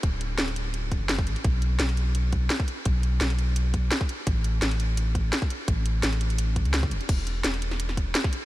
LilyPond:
<<
  \new Staff \with { instrumentName = "Sub bass" } { \clef bass \time 4/4 \key d \mixolydian \tempo 4 = 170 d,,4 d,,4.~ d,,16 fis,,8. a,,16 r16 | b,,4 b,,2 r4 | b,,4 b,,2 r4 | a,,4 a,,2 r4 |
a,,4 a,,4.~ a,,16 cis,8. e,,16 r16 | e,,4 e,,2 r4 | }
  \new DrumStaff \with { instrumentName = "Drums" } \drummode { \time 4/4 <hh bd>8 hh8 <hh sn>16 hh16 hh8 hh8 <hh bd>8 <hh sn>16 bd16 hh16 hh16 | <hh bd>8 hh8 <hh sn>16 hh16 hh8 hh8 <hh bd>8 <hh sn>16 bd16 hh8 | <hh bd>8 hh8 <hh sn>16 hh16 hh8 hh8 <hh bd>8 <hh sn>16 bd16 hh8 | <hh bd>8 hh8 <hh sn>16 hh16 hh8 hh8 <hh bd>8 <hh sn>16 bd16 hh8 |
<hh bd>8 hh8 <hh sn>16 hh16 hh16 hh16 hh8 <hh bd>16 hh16 <hh sn>16 bd16 hh16 hh16 | <cymc hh bd>8 hh8 <hh sn>16 hh16 hh16 sn16 hh16 sn16 <hh bd>8 <hh sn>16 <bd sn>16 hh8 | }
>>